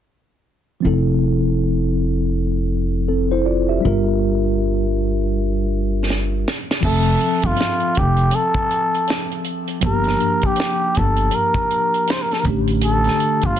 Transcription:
0.80 F3 C4
0.84 F1 E4 A4
3.08 C4 A4
3.31 E4 C5
3.46 F4 D5
3.69 G4 E5
3.80 G3 D4
3.85 G1 F4 A#4
6.10 snare
6.48 snare
6.71 snare
6.80 F1 F3 C4, kick, crash
6.85 A4 E5
7.21 closed hi-hat
7.42 G1 F4, kick, closed hi-hat
7.56 closed hi-hat
7.61 snare
7.80 closed hi-hat
7.95 F1 G4, kick, closed hi-hat
8.17 closed hi-hat
8.31 closed hi-hat
8.35 A4
8.54 kick
8.71 closed hi-hat
8.94 closed hi-hat
9.08 snare, closed hi-hat
9.31 closed hi-hat
9.44 closed hi-hat
9.67 closed hi-hat
9.81 G1 F3 A#3, kick, closed hi-hat
9.85 D4 G4 A#4
10.04 snare, closed hi-hat
10.20 closed hi-hat
10.41 kick, closed hi-hat
10.46 G4
10.56 closed hi-hat
10.60 snare
10.95 G1 A4, kick, closed hi-hat
11.16 closed hi-hat
11.31 closed hi-hat
11.35 A#4
11.54 kick, closed hi-hat
11.70 closed hi-hat
11.94 closed hi-hat
12.07 C5, snare, closed hi-hat
12.22 A#4
12.31 A4, snare, closed hi-hat
12.40 D3 A#4
12.44 A1 A3 D4, kick, closed hi-hat
12.49 G4
12.67 closed hi-hat
12.81 A4, closed hi-hat
13.04 snare, closed hi-hat
13.20 closed hi-hat
13.41 G1, kick, closed hi-hat
13.46 F4
13.56 closed hi-hat

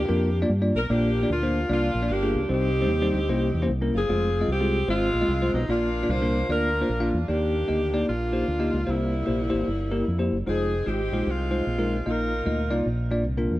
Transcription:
Already playing: A#3 D4 G4
0.08 F2 A#3 D4 F4 A#4
0.42 A#3 D4 F4 D5
0.50 G2
0.62 A#3 D4 F4 D5
0.75 B1 A#4
0.90 A#1 A#2 A#3 D4 F4 G4 D5
1.23 A#3 D4 F4 D5
1.29 D2 A#3 D4 F4
1.43 A#3 D4 F4 C5
1.69 C2 A#3 D4 F4 D5
1.94 A#1
2.02 A#3 D4 F4 D5
2.09 G1 A#3 D4 G4
2.23 A#3 D4 F4 G#4
2.35 C#2
2.49 C2 C3 G3 C4 D#4 G4 C5
2.81 G3 C4 D#4 C5
2.89 D#2
3.02 G3 C4 D#4 C5
3.14 D2
3.29 C2 C3 A#3 C#4 E4 C5
3.54 E2
3.62 A#3 C#4 E4 C5
3.69 C2
3.81 A#3 C#4 E4 A#4
3.93 F#1 C4 F4 G#4
4.09 F1 G#3 C4 F4 C5
4.41 G#3 C4 F4 D#5
4.48 C2 C4 G4
4.61 G#3 C4 F4 G#4
4.88 G#1 G#3 C4 F4 C5
5.14 A#1
5.21 G#3 C4 F4 D#5
5.28 C2
5.42 G#3 C4 F4 C5
5.54 B1 D#4
5.69 A#1 A#2 A#3 D4 F4 D5
6.03 A#3 D4 F4 D5
6.09 C2 F4 C5
6.22 A#3 D4 F4 A#4
6.49 D2 A#3 D4 F4 A#4 D5
6.81 A#3 D4 F4 C5
6.89 A#1
7.00 A#3 D4 F4 F5
7.14 E2
7.28 D#2 D#3 A#3 D4 D#4 G4 D5
7.68 D2 A#3 D#4 G4 D#5
7.93 A#3 D#4 G4 D5
8.08 A#1 A#3 D4 F4
8.32 A#3 D#4 G4 C5
8.48 D2
8.59 A#3 D#4 G4 D#5
8.73 C#2
8.86 C2 C3 G3 A#3 E4 G4 C5
8.91 A#3
9.26 A#1 A#3 E4 G4 C5
9.50 G#1 A#3 E4 G4 C5
9.67 G1
9.91 A#3 E4 G4 A#4
10.08 F2
10.19 A#3 E4 G4 C5
10.31 F#1
10.46 F1 G#3 C4 D#4 F4 G#4 C5
10.86 G#1 G#3 C4 D#4 F4 G4
11.11 A#1 G#3 D#4 F4 C5
11.27 C2 G#3 C4 F4
11.51 G#3 D#4 F4 C5
11.67 A#1
11.79 G#3 D#4 F4 A#4
12.06 A#1 A#2 A#3 D#4 F4 A#4 D#5
12.45 D2 A#3 D#4 F4 D#5
12.71 C2 A#3 D#4 F4 D5
12.86 A#1 A#2
13.11 A#3 D4 F4 D5
13.26 C2
13.38 A#3 D4 F4 A#4
13.51 E2

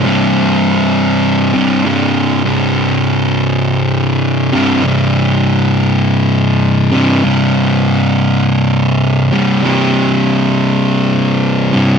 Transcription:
0.04 C2 G2 C3
1.54 C2 G2 C3
1.84 C2 G2 C3
2.44 C2 G2 C3
4.52 C2 G2 C3
4.83 C2 G2 C3
6.92 C2 G2 C3
7.23 C2 G2 C3
9.33 C2 G2 C3
9.62 C2 G2 C3
11.73 C2 G2 C3

